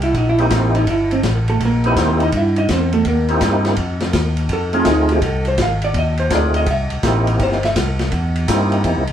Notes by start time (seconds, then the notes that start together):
Already playing: C2
0.02 E4, ride
0.14 A#1 D#4, kick, ride
0.29 E4
0.38 A#3 C4 D#4 E4 G4, ride
0.50 A1 C4, kick, snare, hi-hat pedal, ride
0.75 D#4, ride
0.87 G1 E4, kick, ride
1.11 C4, ride
1.23 A1, kick, snare, hi-hat pedal, ride
1.48 A3 A4, ride
1.60 A#1, kick, ride
1.65 A#3 A#4
1.84 A#3 B3 C4 D#4 E4 G4 B4, ride
1.96 D#2, kick, snare, hi-hat pedal, ride
2.00 C4 C5
2.20 D#4 D#5, ride
2.32 G2, kick, ride
2.37 E4 E5
2.56 D#4 D#5, ride
2.69 E2, kick, snare, hi-hat pedal, ride
2.73 C4 C5
2.92 A3 A4, ride
3.05 D#2 A#3 A#4, kick, ride
3.28 A#3 C4 D#4 E4 G4, ride
3.41 G2, kick, snare, hi-hat pedal, ride
3.65 snare, ride
3.76 F2, kick, ride
4.00 snare, ride
4.13 D#2, kick, snare, hi-hat pedal, ride
4.37 ride
4.49 F2, kick, ride
4.53 A4
4.73 A3 C4 D#4 F4 G#4, ride
4.85 D2, kick, snare, hi-hat pedal, ride
4.90 D#4
5.09 G4, ride
5.21 C2, kick, ride
5.26 A4
5.45 C5, ride
5.58 G#1, kick, snare, hi-hat pedal, ride
5.62 F5
5.82 D5, ride
5.94 D#2, kick, ride
5.98 D#5
6.17 C5, ride
6.30 D2 A3 C4 D#4 F4 G#4, kick, snare, hi-hat pedal, ride
6.35 D5
6.54 D#5, ride
6.66 C2, kick, ride
6.71 E5
6.90 C2, ride
7.03 A1 A#3 C4 D#4 E4 G4, kick, snare, hi-hat pedal, ride
7.27 ride
7.39 G1, kick, ride
7.43 C5
7.52 snare
7.63 E5, snare, ride
7.76 C2, kick, snare, hi-hat pedal, ride
7.99 snare, ride
8.12 E2, kick, ride
8.36 ride
8.48 G2 A#3 C4 D#4 E4 G4, kick, snare, hi-hat pedal, ride
8.72 ride
8.84 E2, kick, ride
8.96 C2
9.07 A#1, ride